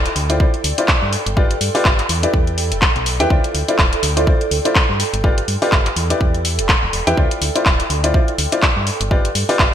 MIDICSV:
0, 0, Header, 1, 5, 480
1, 0, Start_track
1, 0, Tempo, 483871
1, 1357, Time_signature, 4, 2, 24, 8
1, 9663, End_track
2, 0, Start_track
2, 0, Title_t, "Ambient pad"
2, 0, Program_c, 0, 92
2, 0, Note_on_c, 0, 69, 80
2, 0, Note_on_c, 0, 74, 66
2, 0, Note_on_c, 0, 79, 83
2, 1557, Note_on_c, 0, 83, 78
2, 3277, Note_off_c, 0, 83, 0
2, 3491, Note_on_c, 0, 84, 77
2, 4957, Note_off_c, 0, 84, 0
2, 5397, Note_on_c, 0, 83, 79
2, 7118, Note_off_c, 0, 83, 0
2, 7255, Note_on_c, 0, 84, 72
2, 8797, Note_off_c, 0, 84, 0
2, 9663, Note_off_c, 0, 69, 0
2, 9663, Note_off_c, 0, 74, 0
2, 9663, Note_off_c, 0, 79, 0
2, 9663, End_track
3, 0, Start_track
3, 0, Title_t, "Upright piano"
3, 0, Program_c, 1, 0
3, 294, Note_on_c, 1, 64, 71
3, 294, Note_on_c, 1, 65, 65
3, 294, Note_on_c, 1, 72, 65
3, 294, Note_on_c, 1, 74, 80
3, 381, Note_off_c, 1, 64, 0
3, 381, Note_off_c, 1, 65, 0
3, 381, Note_off_c, 1, 72, 0
3, 381, Note_off_c, 1, 74, 0
3, 396, Note_on_c, 1, 64, 78
3, 396, Note_on_c, 1, 65, 67
3, 396, Note_on_c, 1, 72, 72
3, 396, Note_on_c, 1, 74, 87
3, 562, Note_off_c, 1, 64, 0
3, 562, Note_off_c, 1, 65, 0
3, 562, Note_off_c, 1, 72, 0
3, 562, Note_off_c, 1, 74, 0
3, 774, Note_on_c, 1, 74, 88
3, 775, Note_on_c, 1, 64, 79
3, 775, Note_on_c, 1, 65, 71
3, 775, Note_on_c, 1, 72, 68
3, 914, Note_off_c, 1, 64, 0
3, 914, Note_off_c, 1, 65, 0
3, 914, Note_off_c, 1, 72, 0
3, 914, Note_off_c, 1, 74, 0
3, 1356, Note_on_c, 1, 65, 93
3, 1356, Note_on_c, 1, 67, 83
3, 1356, Note_on_c, 1, 71, 86
3, 1356, Note_on_c, 1, 74, 100
3, 1522, Note_off_c, 1, 65, 0
3, 1522, Note_off_c, 1, 67, 0
3, 1522, Note_off_c, 1, 71, 0
3, 1522, Note_off_c, 1, 74, 0
3, 1733, Note_on_c, 1, 65, 93
3, 1733, Note_on_c, 1, 67, 85
3, 1733, Note_on_c, 1, 71, 90
3, 1733, Note_on_c, 1, 74, 103
3, 1977, Note_off_c, 1, 65, 0
3, 1977, Note_off_c, 1, 67, 0
3, 1977, Note_off_c, 1, 71, 0
3, 1977, Note_off_c, 1, 74, 0
3, 2214, Note_on_c, 1, 64, 75
3, 2214, Note_on_c, 1, 67, 65
3, 2214, Note_on_c, 1, 71, 68
3, 2214, Note_on_c, 1, 74, 84
3, 3141, Note_off_c, 1, 64, 0
3, 3141, Note_off_c, 1, 67, 0
3, 3141, Note_off_c, 1, 71, 0
3, 3141, Note_off_c, 1, 74, 0
3, 3175, Note_on_c, 1, 64, 95
3, 3175, Note_on_c, 1, 67, 87
3, 3175, Note_on_c, 1, 71, 92
3, 3175, Note_on_c, 1, 79, 106
3, 3262, Note_off_c, 1, 64, 0
3, 3262, Note_off_c, 1, 67, 0
3, 3262, Note_off_c, 1, 71, 0
3, 3262, Note_off_c, 1, 79, 0
3, 3277, Note_on_c, 1, 64, 80
3, 3277, Note_on_c, 1, 65, 77
3, 3277, Note_on_c, 1, 72, 77
3, 3277, Note_on_c, 1, 74, 93
3, 3521, Note_off_c, 1, 64, 0
3, 3521, Note_off_c, 1, 65, 0
3, 3521, Note_off_c, 1, 72, 0
3, 3521, Note_off_c, 1, 74, 0
3, 3654, Note_on_c, 1, 64, 76
3, 3654, Note_on_c, 1, 65, 71
3, 3654, Note_on_c, 1, 72, 70
3, 3654, Note_on_c, 1, 74, 83
3, 3897, Note_off_c, 1, 65, 0
3, 3897, Note_off_c, 1, 72, 0
3, 3898, Note_off_c, 1, 64, 0
3, 3898, Note_off_c, 1, 74, 0
3, 4134, Note_on_c, 1, 64, 73
3, 4134, Note_on_c, 1, 65, 68
3, 4134, Note_on_c, 1, 74, 80
3, 4135, Note_on_c, 1, 72, 65
3, 4221, Note_off_c, 1, 74, 0
3, 4222, Note_off_c, 1, 64, 0
3, 4222, Note_off_c, 1, 65, 0
3, 4222, Note_off_c, 1, 72, 0
3, 4236, Note_on_c, 1, 64, 78
3, 4236, Note_on_c, 1, 65, 67
3, 4236, Note_on_c, 1, 72, 72
3, 4236, Note_on_c, 1, 74, 89
3, 4402, Note_off_c, 1, 64, 0
3, 4402, Note_off_c, 1, 65, 0
3, 4402, Note_off_c, 1, 72, 0
3, 4402, Note_off_c, 1, 74, 0
3, 4614, Note_on_c, 1, 64, 79
3, 4614, Note_on_c, 1, 65, 73
3, 4614, Note_on_c, 1, 72, 72
3, 4614, Note_on_c, 1, 74, 84
3, 4754, Note_off_c, 1, 64, 0
3, 4754, Note_off_c, 1, 65, 0
3, 4754, Note_off_c, 1, 72, 0
3, 4754, Note_off_c, 1, 74, 0
3, 5197, Note_on_c, 1, 65, 90
3, 5197, Note_on_c, 1, 67, 84
3, 5197, Note_on_c, 1, 71, 84
3, 5197, Note_on_c, 1, 74, 101
3, 5362, Note_off_c, 1, 65, 0
3, 5362, Note_off_c, 1, 67, 0
3, 5362, Note_off_c, 1, 71, 0
3, 5362, Note_off_c, 1, 74, 0
3, 5574, Note_on_c, 1, 65, 97
3, 5574, Note_on_c, 1, 67, 89
3, 5574, Note_on_c, 1, 71, 85
3, 5574, Note_on_c, 1, 74, 106
3, 5817, Note_off_c, 1, 74, 0
3, 5818, Note_off_c, 1, 65, 0
3, 5818, Note_off_c, 1, 67, 0
3, 5818, Note_off_c, 1, 71, 0
3, 6053, Note_on_c, 1, 67, 69
3, 6054, Note_on_c, 1, 64, 72
3, 6054, Note_on_c, 1, 71, 69
3, 6054, Note_on_c, 1, 74, 86
3, 6981, Note_off_c, 1, 64, 0
3, 6981, Note_off_c, 1, 67, 0
3, 6981, Note_off_c, 1, 71, 0
3, 6981, Note_off_c, 1, 74, 0
3, 7014, Note_on_c, 1, 64, 101
3, 7014, Note_on_c, 1, 67, 89
3, 7014, Note_on_c, 1, 71, 90
3, 7014, Note_on_c, 1, 79, 110
3, 7101, Note_off_c, 1, 64, 0
3, 7101, Note_off_c, 1, 71, 0
3, 7101, Note_off_c, 1, 79, 0
3, 7102, Note_off_c, 1, 67, 0
3, 7117, Note_on_c, 1, 64, 90
3, 7117, Note_on_c, 1, 65, 76
3, 7117, Note_on_c, 1, 72, 75
3, 7117, Note_on_c, 1, 74, 92
3, 7361, Note_off_c, 1, 64, 0
3, 7361, Note_off_c, 1, 65, 0
3, 7361, Note_off_c, 1, 72, 0
3, 7361, Note_off_c, 1, 74, 0
3, 7494, Note_on_c, 1, 64, 76
3, 7494, Note_on_c, 1, 65, 72
3, 7494, Note_on_c, 1, 72, 71
3, 7494, Note_on_c, 1, 74, 82
3, 7737, Note_off_c, 1, 64, 0
3, 7737, Note_off_c, 1, 65, 0
3, 7737, Note_off_c, 1, 72, 0
3, 7738, Note_off_c, 1, 74, 0
3, 7974, Note_on_c, 1, 64, 73
3, 7974, Note_on_c, 1, 65, 68
3, 7975, Note_on_c, 1, 72, 69
3, 7975, Note_on_c, 1, 74, 83
3, 8061, Note_off_c, 1, 64, 0
3, 8061, Note_off_c, 1, 65, 0
3, 8061, Note_off_c, 1, 72, 0
3, 8061, Note_off_c, 1, 74, 0
3, 8076, Note_on_c, 1, 64, 79
3, 8076, Note_on_c, 1, 65, 70
3, 8076, Note_on_c, 1, 72, 71
3, 8076, Note_on_c, 1, 74, 88
3, 8242, Note_off_c, 1, 64, 0
3, 8242, Note_off_c, 1, 65, 0
3, 8242, Note_off_c, 1, 72, 0
3, 8242, Note_off_c, 1, 74, 0
3, 8454, Note_on_c, 1, 64, 77
3, 8454, Note_on_c, 1, 65, 69
3, 8454, Note_on_c, 1, 72, 72
3, 8454, Note_on_c, 1, 74, 86
3, 8594, Note_off_c, 1, 64, 0
3, 8594, Note_off_c, 1, 65, 0
3, 8594, Note_off_c, 1, 72, 0
3, 8594, Note_off_c, 1, 74, 0
3, 9037, Note_on_c, 1, 65, 91
3, 9037, Note_on_c, 1, 67, 85
3, 9037, Note_on_c, 1, 71, 82
3, 9037, Note_on_c, 1, 74, 108
3, 9202, Note_off_c, 1, 65, 0
3, 9202, Note_off_c, 1, 67, 0
3, 9202, Note_off_c, 1, 71, 0
3, 9202, Note_off_c, 1, 74, 0
3, 9414, Note_on_c, 1, 65, 98
3, 9414, Note_on_c, 1, 67, 88
3, 9414, Note_on_c, 1, 71, 86
3, 9414, Note_on_c, 1, 74, 106
3, 9657, Note_off_c, 1, 65, 0
3, 9657, Note_off_c, 1, 67, 0
3, 9657, Note_off_c, 1, 74, 0
3, 9658, Note_off_c, 1, 71, 0
3, 9663, End_track
4, 0, Start_track
4, 0, Title_t, "FM bass"
4, 0, Program_c, 2, 39
4, 157, Note_on_c, 2, 38, 103
4, 454, Note_off_c, 2, 38, 0
4, 637, Note_on_c, 2, 38, 86
4, 724, Note_off_c, 2, 38, 0
4, 1014, Note_on_c, 2, 43, 97
4, 1153, Note_off_c, 2, 43, 0
4, 1254, Note_on_c, 2, 31, 82
4, 1536, Note_off_c, 2, 31, 0
4, 1597, Note_on_c, 2, 43, 75
4, 1684, Note_off_c, 2, 43, 0
4, 1837, Note_on_c, 2, 31, 82
4, 2001, Note_off_c, 2, 31, 0
4, 2077, Note_on_c, 2, 40, 98
4, 2242, Note_off_c, 2, 40, 0
4, 2317, Note_on_c, 2, 40, 91
4, 2695, Note_on_c, 2, 28, 95
4, 2709, Note_off_c, 2, 40, 0
4, 2833, Note_off_c, 2, 28, 0
4, 2935, Note_on_c, 2, 35, 89
4, 3175, Note_on_c, 2, 40, 84
4, 3190, Note_off_c, 2, 35, 0
4, 3239, Note_off_c, 2, 40, 0
4, 3277, Note_on_c, 2, 38, 96
4, 3364, Note_off_c, 2, 38, 0
4, 3518, Note_on_c, 2, 38, 79
4, 3604, Note_off_c, 2, 38, 0
4, 3757, Note_on_c, 2, 26, 81
4, 3921, Note_off_c, 2, 26, 0
4, 3997, Note_on_c, 2, 38, 105
4, 4294, Note_off_c, 2, 38, 0
4, 4477, Note_on_c, 2, 38, 87
4, 4564, Note_off_c, 2, 38, 0
4, 4855, Note_on_c, 2, 43, 94
4, 4993, Note_off_c, 2, 43, 0
4, 5094, Note_on_c, 2, 31, 81
4, 5376, Note_off_c, 2, 31, 0
4, 5437, Note_on_c, 2, 43, 82
4, 5524, Note_off_c, 2, 43, 0
4, 5676, Note_on_c, 2, 31, 85
4, 5841, Note_off_c, 2, 31, 0
4, 5916, Note_on_c, 2, 40, 99
4, 6081, Note_off_c, 2, 40, 0
4, 6157, Note_on_c, 2, 40, 90
4, 6534, Note_on_c, 2, 28, 92
4, 6549, Note_off_c, 2, 40, 0
4, 6673, Note_off_c, 2, 28, 0
4, 6774, Note_on_c, 2, 28, 94
4, 6839, Note_off_c, 2, 28, 0
4, 6876, Note_on_c, 2, 28, 80
4, 6964, Note_off_c, 2, 28, 0
4, 7014, Note_on_c, 2, 40, 86
4, 7079, Note_off_c, 2, 40, 0
4, 7117, Note_on_c, 2, 38, 98
4, 7204, Note_off_c, 2, 38, 0
4, 7356, Note_on_c, 2, 38, 81
4, 7444, Note_off_c, 2, 38, 0
4, 7597, Note_on_c, 2, 26, 79
4, 7761, Note_off_c, 2, 26, 0
4, 7837, Note_on_c, 2, 38, 100
4, 8133, Note_off_c, 2, 38, 0
4, 8317, Note_on_c, 2, 38, 86
4, 8404, Note_off_c, 2, 38, 0
4, 8694, Note_on_c, 2, 43, 99
4, 8833, Note_off_c, 2, 43, 0
4, 8934, Note_on_c, 2, 31, 80
4, 9216, Note_off_c, 2, 31, 0
4, 9277, Note_on_c, 2, 43, 82
4, 9364, Note_off_c, 2, 43, 0
4, 9517, Note_on_c, 2, 31, 79
4, 9663, Note_off_c, 2, 31, 0
4, 9663, End_track
5, 0, Start_track
5, 0, Title_t, "Drums"
5, 55, Note_on_c, 9, 42, 55
5, 154, Note_off_c, 9, 42, 0
5, 157, Note_on_c, 9, 46, 114
5, 256, Note_off_c, 9, 46, 0
5, 295, Note_on_c, 9, 42, 61
5, 394, Note_off_c, 9, 42, 0
5, 397, Note_on_c, 9, 36, 120
5, 496, Note_off_c, 9, 36, 0
5, 534, Note_on_c, 9, 42, 34
5, 634, Note_off_c, 9, 42, 0
5, 637, Note_on_c, 9, 46, 112
5, 736, Note_off_c, 9, 46, 0
5, 774, Note_on_c, 9, 42, 63
5, 873, Note_off_c, 9, 42, 0
5, 874, Note_on_c, 9, 39, 113
5, 877, Note_on_c, 9, 36, 127
5, 973, Note_off_c, 9, 39, 0
5, 976, Note_off_c, 9, 36, 0
5, 1117, Note_on_c, 9, 46, 105
5, 1216, Note_off_c, 9, 46, 0
5, 1255, Note_on_c, 9, 42, 59
5, 1354, Note_off_c, 9, 42, 0
5, 1357, Note_on_c, 9, 36, 118
5, 1456, Note_off_c, 9, 36, 0
5, 1494, Note_on_c, 9, 42, 50
5, 1594, Note_off_c, 9, 42, 0
5, 1596, Note_on_c, 9, 46, 104
5, 1696, Note_off_c, 9, 46, 0
5, 1734, Note_on_c, 9, 46, 59
5, 1834, Note_off_c, 9, 46, 0
5, 1835, Note_on_c, 9, 39, 116
5, 1837, Note_on_c, 9, 36, 119
5, 1934, Note_off_c, 9, 39, 0
5, 1936, Note_off_c, 9, 36, 0
5, 1972, Note_on_c, 9, 39, 37
5, 1975, Note_on_c, 9, 42, 50
5, 2071, Note_off_c, 9, 39, 0
5, 2074, Note_off_c, 9, 42, 0
5, 2076, Note_on_c, 9, 46, 108
5, 2175, Note_off_c, 9, 46, 0
5, 2214, Note_on_c, 9, 42, 60
5, 2313, Note_off_c, 9, 42, 0
5, 2317, Note_on_c, 9, 36, 116
5, 2416, Note_off_c, 9, 36, 0
5, 2454, Note_on_c, 9, 42, 33
5, 2553, Note_off_c, 9, 42, 0
5, 2557, Note_on_c, 9, 46, 107
5, 2656, Note_off_c, 9, 46, 0
5, 2695, Note_on_c, 9, 42, 63
5, 2794, Note_off_c, 9, 42, 0
5, 2795, Note_on_c, 9, 39, 113
5, 2797, Note_on_c, 9, 36, 120
5, 2894, Note_off_c, 9, 39, 0
5, 2896, Note_off_c, 9, 36, 0
5, 2935, Note_on_c, 9, 42, 34
5, 3034, Note_off_c, 9, 42, 0
5, 3037, Note_on_c, 9, 46, 100
5, 3136, Note_off_c, 9, 46, 0
5, 3175, Note_on_c, 9, 42, 58
5, 3274, Note_off_c, 9, 42, 0
5, 3277, Note_on_c, 9, 36, 110
5, 3376, Note_off_c, 9, 36, 0
5, 3415, Note_on_c, 9, 42, 50
5, 3514, Note_off_c, 9, 42, 0
5, 3517, Note_on_c, 9, 46, 100
5, 3616, Note_off_c, 9, 46, 0
5, 3655, Note_on_c, 9, 42, 59
5, 3754, Note_off_c, 9, 42, 0
5, 3755, Note_on_c, 9, 39, 114
5, 3757, Note_on_c, 9, 36, 113
5, 3854, Note_off_c, 9, 39, 0
5, 3856, Note_off_c, 9, 36, 0
5, 3895, Note_on_c, 9, 42, 52
5, 3995, Note_off_c, 9, 42, 0
5, 3997, Note_on_c, 9, 46, 110
5, 4097, Note_off_c, 9, 46, 0
5, 4136, Note_on_c, 9, 42, 60
5, 4235, Note_off_c, 9, 42, 0
5, 4237, Note_on_c, 9, 36, 111
5, 4336, Note_off_c, 9, 36, 0
5, 4376, Note_on_c, 9, 42, 36
5, 4475, Note_off_c, 9, 42, 0
5, 4478, Note_on_c, 9, 46, 106
5, 4577, Note_off_c, 9, 46, 0
5, 4616, Note_on_c, 9, 42, 64
5, 4715, Note_off_c, 9, 42, 0
5, 4716, Note_on_c, 9, 39, 112
5, 4717, Note_on_c, 9, 36, 125
5, 4815, Note_off_c, 9, 39, 0
5, 4816, Note_off_c, 9, 36, 0
5, 4958, Note_on_c, 9, 46, 101
5, 5057, Note_off_c, 9, 46, 0
5, 5095, Note_on_c, 9, 42, 57
5, 5194, Note_off_c, 9, 42, 0
5, 5197, Note_on_c, 9, 36, 106
5, 5296, Note_off_c, 9, 36, 0
5, 5335, Note_on_c, 9, 42, 52
5, 5434, Note_off_c, 9, 42, 0
5, 5437, Note_on_c, 9, 46, 94
5, 5536, Note_off_c, 9, 46, 0
5, 5575, Note_on_c, 9, 46, 57
5, 5674, Note_off_c, 9, 46, 0
5, 5674, Note_on_c, 9, 39, 106
5, 5677, Note_on_c, 9, 36, 109
5, 5773, Note_off_c, 9, 39, 0
5, 5776, Note_off_c, 9, 36, 0
5, 5812, Note_on_c, 9, 39, 36
5, 5814, Note_on_c, 9, 42, 55
5, 5911, Note_off_c, 9, 39, 0
5, 5914, Note_off_c, 9, 42, 0
5, 5917, Note_on_c, 9, 46, 108
5, 6016, Note_off_c, 9, 46, 0
5, 6054, Note_on_c, 9, 42, 66
5, 6154, Note_off_c, 9, 42, 0
5, 6157, Note_on_c, 9, 36, 107
5, 6256, Note_off_c, 9, 36, 0
5, 6294, Note_on_c, 9, 42, 35
5, 6394, Note_off_c, 9, 42, 0
5, 6397, Note_on_c, 9, 46, 102
5, 6496, Note_off_c, 9, 46, 0
5, 6535, Note_on_c, 9, 42, 69
5, 6634, Note_off_c, 9, 42, 0
5, 6634, Note_on_c, 9, 39, 111
5, 6637, Note_on_c, 9, 36, 114
5, 6734, Note_off_c, 9, 39, 0
5, 6736, Note_off_c, 9, 36, 0
5, 6877, Note_on_c, 9, 46, 99
5, 6976, Note_off_c, 9, 46, 0
5, 7015, Note_on_c, 9, 42, 62
5, 7114, Note_off_c, 9, 42, 0
5, 7117, Note_on_c, 9, 36, 101
5, 7216, Note_off_c, 9, 36, 0
5, 7255, Note_on_c, 9, 42, 54
5, 7354, Note_off_c, 9, 42, 0
5, 7357, Note_on_c, 9, 46, 101
5, 7456, Note_off_c, 9, 46, 0
5, 7495, Note_on_c, 9, 42, 67
5, 7594, Note_off_c, 9, 42, 0
5, 7595, Note_on_c, 9, 39, 113
5, 7597, Note_on_c, 9, 36, 111
5, 7694, Note_off_c, 9, 39, 0
5, 7696, Note_off_c, 9, 36, 0
5, 7735, Note_on_c, 9, 42, 55
5, 7834, Note_off_c, 9, 42, 0
5, 7838, Note_on_c, 9, 46, 104
5, 7937, Note_off_c, 9, 46, 0
5, 7975, Note_on_c, 9, 42, 67
5, 8074, Note_off_c, 9, 42, 0
5, 8077, Note_on_c, 9, 36, 110
5, 8176, Note_off_c, 9, 36, 0
5, 8216, Note_on_c, 9, 42, 38
5, 8315, Note_off_c, 9, 42, 0
5, 8317, Note_on_c, 9, 46, 105
5, 8417, Note_off_c, 9, 46, 0
5, 8455, Note_on_c, 9, 42, 71
5, 8554, Note_off_c, 9, 42, 0
5, 8555, Note_on_c, 9, 39, 113
5, 8557, Note_on_c, 9, 36, 114
5, 8654, Note_off_c, 9, 39, 0
5, 8656, Note_off_c, 9, 36, 0
5, 8796, Note_on_c, 9, 46, 97
5, 8896, Note_off_c, 9, 46, 0
5, 8935, Note_on_c, 9, 42, 62
5, 9034, Note_off_c, 9, 42, 0
5, 9037, Note_on_c, 9, 36, 108
5, 9137, Note_off_c, 9, 36, 0
5, 9175, Note_on_c, 9, 42, 56
5, 9274, Note_off_c, 9, 42, 0
5, 9277, Note_on_c, 9, 46, 101
5, 9376, Note_off_c, 9, 46, 0
5, 9415, Note_on_c, 9, 46, 57
5, 9514, Note_off_c, 9, 46, 0
5, 9515, Note_on_c, 9, 39, 119
5, 9517, Note_on_c, 9, 36, 109
5, 9614, Note_off_c, 9, 39, 0
5, 9616, Note_off_c, 9, 36, 0
5, 9663, End_track
0, 0, End_of_file